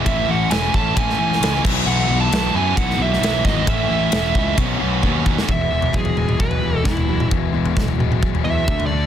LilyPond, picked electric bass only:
\new Staff \with { instrumentName = "Picked electric bass" } { \clef bass \time 4/4 \key b \mixolydian \tempo 4 = 132 a,,8 a,,8 e,,8 a,,8 a,,8 a,,8 cis,8 b,,8 | b,,8 b,,8 b,,8 fis,8 b,,8 b,,8 b,,8 gis,,8 | a,,8 a,,8 e,,8 cis,8 b,,8 b,,8 dis,4 | \key e \mixolydian e,,8 e,,8 e,,8 e,,8 e,,8 e,,8 e,,8 e,,8 |
e,,8 e,,8 e,,8 e,,8 e,,8 e,8 d,8 d,8 | }